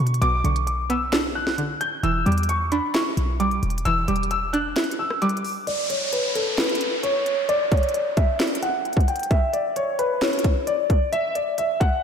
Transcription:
0.00 0.21 B2 loud
0.00 0.43 D3 medium
0.00 0.22 B3 loud
0.00 0.44 D4 medium
0.00 0.19 C#6 loud
0.07 closed hi-hat medium
0.14 closed hi-hat medium
0.22 0.43 B1 loud
0.22 1.35 B2 loud
0.22 0.43 D6 loud
0.22 closed hi-hat medium
0.44 1.77 B1 loud
0.44 1.57 D3 medium
0.44 0.66 C#6 medium
0.44 closed hi-hat medium
0.56 closed hi-hat medium
0.67 0.88 D6 medium
0.67 closed hi-hat medium
0.90 2.03 B3 loud
0.90 1.33 E6 medium
0.90 closed hi-hat medium
1.12 2.03 D4 medium
1.12 snare loud
1.12 clap loud
1.12 closed hi-hat medium
1.35 1.78 F#6 medium
1.47 snare medium
1.58 2.04 D3 medium
1.58 closed hi-hat medium
1.81 2.02 G6 medium
1.81 closed hi-hat medium
2.03 2.25 E1 loud
2.03 3.17 E3 loud
2.03 2.25 E6 medium
2.03 closed hi-hat medium
2.26 2.81 E2 loud
2.26 3.39 G3 medium
2.26 2.47 D6 medium
2.26 closed hi-hat soft
2.32 closed hi-hat medium
2.38 closed hi-hat medium
2.43 closed hi-hat medium
2.49 2.70 C#6 medium
2.49 closed hi-hat medium
2.72 3.85 D4 loud
2.72 2.93 B5 medium
2.72 closed hi-hat medium
2.94 4.08 E4 medium
2.94 3.37 C#6 medium
2.94 snare loud
2.94 clap loud
2.94 closed hi-hat medium
3.17 3.61 B1 loud
3.17 closed hi-hat medium
3.40 4.07 G3 medium
3.40 3.83 D6 medium
3.40 closed hi-hat medium
3.51 closed hi-hat soft
3.63 3.85 E1 loud
3.63 closed hi-hat soft
3.70 closed hi-hat medium
3.78 closed hi-hat medium
3.85 4.07 E1 loud
3.85 4.99 E3 loud
3.85 4.06 E6 loud
3.85 closed hi-hat medium
4.08 4.74 E1 loud
4.08 5.21 G3 medium
4.08 4.29 D6 medium
4.08 closed hi-hat medium
4.16 closed hi-hat medium
4.23 closed hi-hat soft
4.31 4.52 E6 medium
4.31 closed hi-hat medium
4.53 5.67 D4 loud
4.53 4.96 F#6 medium
4.53 closed hi-hat medium
4.76 5.67 E4 medium
4.76 snare loud
4.76 clap loud
4.76 closed hi-hat soft
4.84 closed hi-hat medium
4.91 closed hi-hat medium
4.99 5.20 E6 medium
5.10 cross-stick medium
5.22 5.67 G3 loud
5.22 5.65 D6 medium
5.22 closed hi-hat medium
5.29 closed hi-hat medium
5.37 closed hi-hat medium
5.45 open hi-hat medium
5.67 5.88 D5 loud
5.67 closed hi-hat medium
5.67 downlifter medium
5.90 6.11 C#5 medium
5.90 closed hi-hat medium
6.13 6.34 B4 medium
6.13 closed hi-hat medium
6.35 6.56 A4 medium
6.35 closed hi-hat medium
6.58 7.01 B4 medium
6.58 snare loud
6.58 clap medium
6.58 closed hi-hat soft
6.64 closed hi-hat medium
6.69 closed hi-hat medium
6.75 closed hi-hat medium
6.81 closed hi-hat medium
7.03 7.46 C#5 medium
7.03 closed hi-hat medium
7.26 closed hi-hat medium
7.49 7.70 D5 loud
7.49 closed hi-hat medium
7.72 7.93 C#5 medium
7.72 kick loud
7.72 closed hi-hat medium
7.77 closed hi-hat medium
7.83 closed hi-hat medium
7.89 closed hi-hat medium
7.94 8.15 D5 medium
7.94 closed hi-hat medium
8.17 8.60 E5 medium
8.17 kick loud
8.17 closed hi-hat medium
8.40 snare loud
8.40 clap medium
8.40 closed hi-hat soft
8.47 closed hi-hat medium
8.55 closed hi-hat medium
8.63 9.05 F#5 medium
8.63 closed hi-hat medium
8.85 closed hi-hat soft
8.93 kick medium
8.93 closed hi-hat soft
9.01 closed hi-hat medium
9.08 9.29 G5 medium
9.08 closed hi-hat medium
9.16 closed hi-hat medium
9.19 closed hi-hat soft
9.23 closed hi-hat medium
9.31 9.52 E5 medium
9.31 kick loud
9.31 closed hi-hat medium
9.53 9.75 D5 medium
9.53 closed hi-hat medium
9.76 9.97 C#5 medium
9.76 closed hi-hat medium
9.99 10.20 B4 medium
9.99 closed hi-hat medium
10.21 10.64 C#5 medium
10.21 snare loud
10.21 clap medium
10.21 closed hi-hat soft
10.27 closed hi-hat medium
10.33 closed hi-hat medium
10.39 closed hi-hat medium
10.44 kick loud
10.44 closed hi-hat medium
10.67 11.10 D5 medium
10.67 closed hi-hat medium
10.90 kick medium
10.90 closed hi-hat medium
11.12 11.34 E5 loud
11.12 closed hi-hat medium
11.35 11.56 D5 medium
11.35 closed hi-hat medium
11.58 11.79 E5 medium
11.58 closed hi-hat medium
11.80 12.03 F#5 medium
11.80 kick loud
11.80 closed hi-hat medium

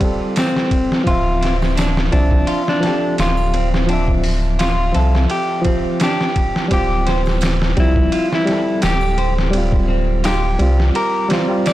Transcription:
0.00 1.09 G3 loud
0.00 0.02 C4 medium
0.00 1.03 C4 medium
0.00 1.09 F4 loud
0.00 kick medium
0.00 ride medium
0.05 1.05 A4 loud
0.36 1.01 C4 medium
0.36 snare loud
0.36 ride medium
0.36 tambourine medium
0.56 snare soft
0.71 kick medium
0.71 ride medium
0.92 snare medium
1.04 2.10 D1 medium
1.04 2.07 F3 loud
1.04 2.09 C4 medium
1.04 1.56 F4 medium
1.04 kick loud
1.04 ride medium
1.11 2.11 E5 loud
1.41 1.74 C4 medium
1.41 snare soft
1.41 ride medium
1.62 snare soft
1.62 triangle medium
1.76 1.98 D4 loud
1.76 snare loud
1.76 ride medium
1.76 tambourine medium
1.97 snare medium
2.12 2.44 C2 medium
2.12 2.79 F3 medium
2.12 2.80 C4 medium
2.12 2.61 D4 medium
2.12 2.80 E5 medium
2.12 kick loud
2.12 ride medium
2.31 kick loud
2.47 2.81 F4 loud
2.47 ride medium
2.68 3.15 D4 loud
2.68 snare medium
2.80 3.84 F3 medium
2.80 3.85 C4 medium
2.80 3.50 A4 medium
2.80 snare soft
2.80 ride medium
2.87 3.87 G4 loud
3.18 4.92 D1 loud
3.18 3.68 F4 medium
3.18 snare loud
3.18 ride medium
3.18 tambourine medium
3.37 triangle medium
3.54 3.86 C4 medium
3.54 ride medium
3.74 snare medium
3.87 4.90 F3 medium
3.87 4.91 C4 medium
3.87 4.10 D4 medium
3.87 ride medium
3.93 4.93 E5 loud
4.08 kick loud
4.24 open hi-hat medium
4.59 4.93 F4 medium
4.59 5.24 F4 medium
4.59 snare loud
4.59 ride medium
4.59 tambourine medium
4.92 5.27 C2 medium
4.92 5.60 F3 medium
4.92 5.61 C4 medium
4.92 5.62 A4 medium
4.92 5.62 E5 loud
4.92 ride medium
5.15 snare soft
5.30 5.63 G4 medium
5.30 ride medium
5.62 6.66 F3 medium
5.62 6.67 C4 medium
5.62 5.97 C4 medium
5.62 kick loud
5.62 ride medium
5.68 6.69 G4 medium
6.00 6.22 D4 loud
6.00 6.66 G4 medium
6.00 snare loud
6.00 ride medium
6.00 tambourine medium
6.21 snare soft
6.36 kick medium
6.36 ride medium
6.56 snare medium
6.68 7.74 D1 medium
6.68 7.72 G3 loud
6.68 7.74 C4 medium
6.68 7.05 G4 medium
6.68 kick loud
6.68 ride medium
6.74 7.75 F4 loud
6.74 7.21 G4 medium
7.07 7.74 C5 medium
7.07 snare soft
7.07 ride medium
7.26 snare soft
7.26 triangle medium
7.41 snare loud
7.41 ride medium
7.41 tambourine medium
7.62 snare medium
7.76 8.09 C2 medium
7.76 8.45 F3 loud
7.76 8.44 G3 medium
7.76 8.09 C4 medium
7.76 8.44 C4 medium
7.76 8.27 E4 loud
7.76 kick loud
7.76 ride medium
7.96 kick loud
8.12 8.34 F4 loud
8.12 ride medium
8.33 8.80 E4 loud
8.33 snare medium
8.45 9.49 G3 medium
8.45 9.50 C4 medium
8.45 snare soft
8.45 ride medium
8.52 9.52 A4 medium
8.82 10.57 D1 loud
8.82 9.17 G4 loud
8.82 9.33 G4 loud
8.82 snare loud
8.82 ride medium
8.82 tambourine medium
9.01 triangle medium
9.18 9.86 C5 medium
9.18 ride medium
9.38 snare medium
9.51 10.54 G3 loud
9.51 10.56 C4 medium
9.51 ride medium
9.58 10.58 F4 loud
9.72 kick loud
9.88 10.21 C4 medium
10.24 10.45 F4 loud
10.24 10.89 G4 medium
10.24 snare loud
10.24 ride medium
10.24 tambourine medium
10.59 10.91 C2 medium
10.59 11.26 G3 medium
10.59 11.27 C4 medium
10.59 11.28 F4 loud
10.59 ride medium
10.80 snare soft
10.95 11.29 G4 loud
10.95 11.28 A#4 medium
10.95 ride medium
11.29 11.44 G3 medium
11.29 11.64 C4 medium
11.29 11.45 C4 medium
11.29 11.46 F4 loud
11.29 snare loud
11.29 ride medium
11.48 11.62 G3 medium
11.48 11.63 C4 medium
11.48 11.64 F4 medium
11.66 11.73 D5 medium
11.66 snare loud
11.66 ride medium
11.66 tambourine medium

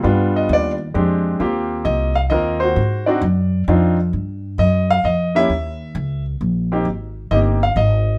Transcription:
0.03 0.49 G2 medium
0.03 0.74 G3 medium
0.03 0.74 B3 medium
0.03 0.74 D4 medium
0.03 0.75 F4 medium
0.36 0.50 D#5 medium
0.49 0.94 D#2 medium
0.53 0.71 D5 medium
0.94 1.39 F2 medium
0.94 1.40 G#3 medium
0.94 1.39 C4 medium
0.94 1.41 D4 medium
0.94 1.40 G4 medium
1.40 1.85 D#2 medium
1.40 2.10 A#3 medium
1.40 2.11 C4 medium
1.40 2.11 F4 medium
1.40 2.11 G4 medium
1.85 2.30 C2 loud
1.85 2.14 D#5 medium
2.15 2.20 F5 loud
2.30 2.75 D#2 medium
2.30 2.77 A#3 medium
2.30 2.77 C4 medium
2.30 2.77 F4 medium
2.30 2.77 A#4 medium
2.30 2.59 D#5 medium
2.60 3.07 F#4 medium
2.60 3.03 C5 medium
2.76 3.21 G#2 medium
3.06 3.21 C4 medium
3.06 3.21 D4 medium
3.06 3.22 D#4 medium
3.06 3.22 F#4 medium
3.06 3.63 D5 medium
3.21 3.66 F#2 loud
3.68 4.12 F2 medium
3.68 3.96 C4 medium
3.68 3.96 D4 medium
3.68 3.96 D#4 medium
3.68 3.96 F4 medium
4.13 4.58 G2 medium
4.58 5.03 F#2 medium
4.58 4.88 D#5 medium
4.91 5.05 F5 loud
5.04 5.48 F2 medium
5.04 5.36 D#5 medium
5.35 5.49 A#3 medium
5.35 5.49 C#4 medium
5.35 5.49 E4 medium
5.35 5.49 G4 medium
5.35 6.23 E5 loud
5.49 5.94 D#2 medium
5.95 6.39 C#2 loud
6.41 6.84 A#1 medium
6.72 6.85 A#3 medium
6.72 6.85 C4 medium
6.72 6.86 D#4 medium
6.72 6.86 G4 medium
6.85 7.30 G#1 medium
7.31 7.75 G1 medium
7.31 7.59 A#3 medium
7.31 7.60 C4 medium
7.31 7.60 D#4 soft
7.31 7.60 G4 medium
7.31 7.38 D#5 medium
7.63 7.78 F5 loud
7.76 8.18 G#1 medium
7.76 8.18 D#5 medium

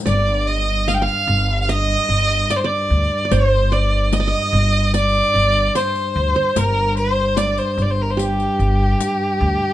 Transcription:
0.00 0.31 C5 medium
0.05 1.06 G1 medium
0.05 6.56 G2 medium
0.05 1.04 D5 medium
0.05 0.49 D5 medium
0.05 riq medium
0.47 0.90 D#5 loud
0.47 riq soft
0.88 1.02 F5 medium
0.88 0.96 F5 medium
0.88 riq medium
0.94 1.04 G5 medium
1.02 1.91 F5 medium
1.02 1.61 F5 loud
1.08 riq soft
1.27 1.94 G1 medium
1.27 riq soft
1.62 1.71 F5 medium
1.69 2.56 D#5 medium
1.69 2.52 D#5 loud
1.69 riq soft
1.90 riq soft
2.09 2.42 G1 medium
2.09 riq soft
2.50 2.64 D5 medium
2.50 2.58 D5 medium
2.50 riq medium
2.56 2.67 C5 medium
2.64 3.25 D5 medium
2.64 3.33 D5 medium
2.90 3.07 D2 medium
3.25 3.72 D5 medium
3.31 4.32 G1 medium
3.31 4.37 C5 medium
3.31 3.74 C5 loud
3.31 riq medium
3.72 4.19 D5 medium
3.72 4.16 D5 medium
3.72 riq soft
4.12 4.26 D#5 medium
4.12 4.94 D#5 loud
4.12 riq medium
4.20 4.34 D5 medium
4.28 5.00 D#5 medium
4.33 riq soft
4.53 5.20 G1 medium
4.53 riq soft
4.94 5.93 D5 medium
4.94 5.77 D5 loud
4.94 riq medium
5.14 riq soft
5.34 5.68 G1 medium
5.34 riq soft
5.75 6.59 C5 medium
5.75 6.35 C5 medium
5.75 riq medium
5.96 riq soft
6.16 6.32 D2 medium
6.36 7.41 C5 medium
6.56 7.57 G1 medium
6.56 9.73 G2 medium
6.56 7.70 A#4 medium
6.56 6.97 A#4 loud
6.56 riq medium
6.97 7.39 C5 medium
6.97 riq soft
7.37 8.35 D5 medium
7.37 7.60 D5 medium
7.37 riq medium
7.58 7.84 C5 medium
7.58 riq soft
7.78 8.45 G1 medium
7.78 riq soft
7.82 7.93 D5 medium
7.91 8.03 C5 medium
8.02 8.12 A#4 medium
8.10 8.22 C5 medium
8.17 9.73 G4 medium
8.17 riq soft
8.40 riq soft
8.59 8.93 G1 medium
8.59 riq soft
9.01 riq medium
9.41 9.58 D2 medium

